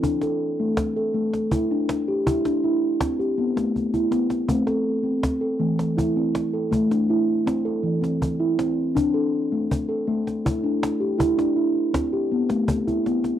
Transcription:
0.03 D4, cajon bass
0.22 A4, cajon slap
0.60 A3
0.77 cajon bass, cajon slap
0.97 A4, cajon slap
1.14 A3
1.34 cajon slap
1.51 E4, cajon bass
1.71 D4
1.89 cajon slap
2.08 G4
2.26 E4, cajon bass
2.45 D4, cajon slap
2.64 E4, cajon slap
3.01 C4, cajon bass, cajon slap
3.19 G4, cajon slap
3.38 B3, cajon slap
3.56 A3, cajon slap
3.76 cajon bass
3.94 E4, cajon bass
4.11 B3, cajon slap
4.30 cajon slap
4.49 A3 C4, cajon bass
4.67 A4, cajon slap
5.03 C4
5.24 cajon bass, cajon slap
5.41 A4, cajon slap
5.60 E3 A3
5.79 cajon slap
5.97 E4, cajon bass
6.17 C4
6.35 cajon slap
6.54 A4
6.71 A3, cajon bass
6.91 D4, cajon slap
7.10 E4
7.46 C4, cajon slap
7.65 A4, cajon slap
7.83 E3
8.02 C4, cajon slap
8.22 cajon bass
8.40 E4
8.59 C4, cajon slap
8.95 D4, cajon bass
9.14 A4
9.52 A3
9.71 cajon bass
9.89 A4
10.07 A3
10.27 cajon slap
10.45 E4, cajon bass
10.64 D4
10.83 cajon slap
11.00 G4
11.18 E4, cajon bass
11.38 D4, cajon slap
11.56 E4
11.75 cajon slap
11.94 C4, cajon bass, cajon slap
12.13 G4, cajon slap
12.32 B3
12.49 A3, cajon slap
12.68 cajon bass
12.87 E4, cajon bass
13.06 B3, cajon slap
13.24 cajon slap

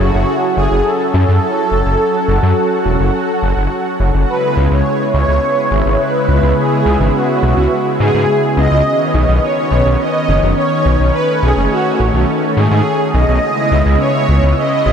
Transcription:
Already playing: F#3 C#4 E4 A4
0.00 F#1 F#4
0.14 F#1
0.57 F#1 G#4
0.71 F#1
0.85 A4
1.14 F#2
1.28 F#2
1.71 F#1
1.85 F#1
2.00 F#4
2.28 F#1
2.43 F#2
2.85 E1
3.00 F#1
3.43 F#1
3.57 F#1
4.00 F#1
4.14 F#1
4.29 C#3 G#3 B3 E4 B4
4.57 C#2
4.71 C#2 C#5
5.14 C#2 C#5
5.28 C#2
5.71 G#1
5.86 G#1
6.01 B4
6.28 C#2
6.43 C#2
6.58 G#4
6.86 C#2
7.00 G#1
7.15 F#4
7.43 B1
7.57 C#2
8.00 G#2 G#4
8.14 G#2
8.57 C#2 D#5
8.72 C#2
8.86 D#3 B3 C#4
9.14 B1
9.28 B1
9.43 C#5
9.71 B1
9.86 B1
10.00 D#5
10.28 F#1
10.43 F#1
10.57 C#5
10.85 B1
11.00 B1
11.14 A3 B4
11.43 B1 G#4
11.57 F#1
11.71 F#4
12.00 A1
12.14 B1
12.57 G#2 G#4
12.71 G#2
13.14 B1 D#5
13.28 B1
13.43 C#3 G#3 B3 E4
13.72 C#2
13.86 C#2
14.00 C#5
14.29 C#2
14.43 C#2
14.57 D#5
14.86 G#1

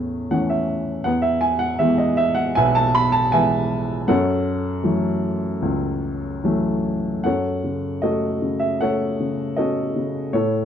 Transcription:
Already playing: E2 A2 E3 A3 C#4 E4 A4 C#5
0.31 E3 A3 C#4 F#5
0.50 E5
1.04 E2 B4 F#5
1.22 E5
1.41 G#5
1.59 F#5
1.79 E3 G#3 B3 E5
1.98 D#5
2.17 E5
2.35 F#5
2.55 B1 B4 E5 G#5
2.75 A5
2.95 B5
3.12 A5
3.32 E3 G#3 B3 B4 E5 G#5
4.08 F#2 A4 C#5 F#5
4.83 E3 F#3 A3
5.62 C#2
6.44 E3 F#3 A3
7.24 F#2 A4 C#5 F#5
7.64 C#3
8.02 A3 F#4 A4 D#5
8.42 C#3
8.60 E5
8.81 A3 A4 C#5 F#5
9.20 C#3
9.56 C#4 F#4 A4 D#5
9.96 C#3
10.33 A2 E4 A4 C#5

